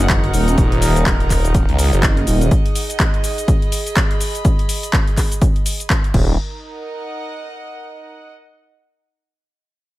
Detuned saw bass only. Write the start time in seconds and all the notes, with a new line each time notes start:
0.00 F#1
0.34 D#1
0.58 D#1
1.06 D#1
1.45 D#1
1.69 C#2
1.93 F#1
2.27 D#1
6.14 D#1